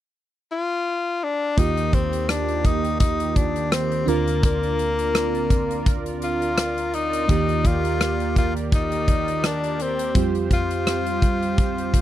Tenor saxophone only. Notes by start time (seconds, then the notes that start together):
0.52 F4
1.23 D4
1.58 D#4
1.94 C4
2.29 D4
2.66 D#4
3.00 D#4
3.36 D4
3.72 C4
4.09 A#3
4.45 A#3
6.24 F4
6.95 D#4
7.67 F4
8.38 F4
8.74 D#4
9.46 D4
9.82 C4
10.54 F4